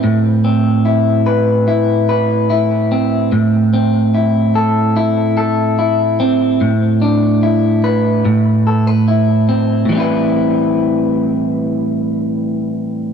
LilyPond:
\new Staff \with { instrumentName = "Clean electric guitar" } { \time 4/4 \key a \minor \tempo 4 = 73 <a, c' e' b'>8 c'8 e'8 b'8 e'8 b'8 e'8 c'8 | a,8 c'8 e'8 a'8 e'8 a'8 e'8 c'8 | a,8 d'8 e'8 b'8 a,8 a'16 b'16 e'8 c'8 | <a, e g c' e' b'>1 | }